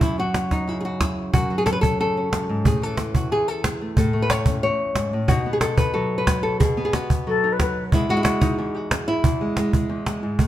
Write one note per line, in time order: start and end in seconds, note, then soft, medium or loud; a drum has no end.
0.01 1.32 F#2 medium
0.01 0.19 E4 medium
0.01 cajon bass medium
0.18 1.31 F#3 soft
0.18 0.69 F#4 medium
0.34 cajon slap medium
0.51 1.01 D#4 medium
0.51 cajon bass medium
0.51 cajon slap soft
0.68 1.31 C#3 medium
0.68 0.80 E4 medium
0.80 0.84 G#4 medium
0.85 1.00 F#4 medium
1.00 1.33 E4 medium
1.00 cajon bass medium
1.00 cajon slap medium
1.33 2.31 F#2 medium
1.33 1.58 F#4 medium
1.33 cajon bass medium
1.50 2.63 F#3 medium
1.50 cajon slap soft
1.58 1.65 G#4 medium
1.66 1.72 A4 loud
1.66 cajon slap medium
1.73 1.80 B4 medium
1.81 1.99 A4 loud
1.81 cajon bass medium
2.00 2.64 C#3 medium
2.00 2.66 A4 loud
2.17 3.98 C#4 soft
2.33 2.49 F#2 medium
2.33 cajon slap loud
2.49 2.66 G#2 medium
2.65 3.31 A2 medium
2.65 2.83 G#4 medium
2.65 cajon bass medium
2.82 3.95 E3 medium
2.82 3.15 A4 medium
2.82 cajon slap soft
2.97 cajon slap medium
3.15 3.32 F#4 medium
3.15 cajon bass medium
3.31 3.97 E2 medium
3.31 3.48 G#4 medium
3.48 3.65 A4 medium
3.64 4.22 G#4 loud
3.64 cajon slap loud
3.82 3.96 A3 soft
3.97 4.63 A2 medium
3.97 4.55 A4 medium
3.97 cajon bass medium
4.13 5.27 A3 medium
4.22 4.31 B4 medium
4.30 4.62 C#5 loud
4.30 cajon slap loud
4.46 5.28 C#4 soft
4.46 cajon bass medium
4.63 4.96 E2 medium
4.63 5.29 C#5 loud
4.95 5.12 G#2 medium
4.95 cajon slap medium
5.12 5.29 A2 medium
5.12 cajon slap soft
5.28 6.59 B2 medium
5.28 5.46 B3 soft
5.28 6.60 D#4 soft
5.28 5.53 F#4 medium
5.28 cajon bass medium
5.46 6.77 B3 medium
5.53 5.60 G#4 medium
5.61 5.92 A4 loud
5.61 cajon slap medium
5.78 6.17 B4 medium
5.78 cajon bass medium
5.94 6.58 F#3 medium
5.94 6.27 A4 medium
6.18 6.76 B4 medium
6.27 6.43 F#4 soft
6.27 cajon bass medium
6.27 cajon slap loud
6.43 6.59 A4 medium
6.60 7.91 B2 medium
6.60 6.84 G#4 medium
6.60 cajon bass medium
6.77 7.93 B3 medium
6.77 cajon slap soft
6.85 6.93 G#4 medium
6.93 7.59 F#4 medium
6.93 cajon slap loud
7.10 cajon bass medium
7.27 7.91 F#3 medium
7.27 7.53 A4 medium
7.44 7.91 D#4 soft
7.52 7.60 B4 medium
7.60 7.91 F#4 soft
7.60 7.83 B4 medium
7.60 cajon bass medium
7.60 cajon slap loud
7.92 8.57 E2 medium
7.92 8.09 G#3 medium
7.92 8.10 B3 soft
7.92 8.16 E4 medium
7.92 cajon bass medium
8.09 9.22 G#3 medium
8.09 8.22 F#4 loud
8.17 8.56 E4 medium
8.23 8.73 F#4 loud
8.23 cajon slap loud
8.41 8.91 D#4 medium
8.41 cajon bass medium
8.58 9.23 E2 medium
8.58 9.07 E4 medium
8.74 9.40 F#4 loud
8.91 cajon slap loud
9.08 10.47 E4 medium
9.24 9.88 E2 medium
9.24 cajon bass medium
9.41 9.57 G#3 medium
9.57 9.73 G#3 soft
9.57 cajon slap medium
9.73 10.06 G#3 soft
9.73 cajon bass medium
9.89 10.22 E2 medium
10.06 10.47 G#3 soft
10.06 cajon slap medium
10.23 10.39 G#2 medium
10.39 10.47 A2 medium
10.39 cajon bass medium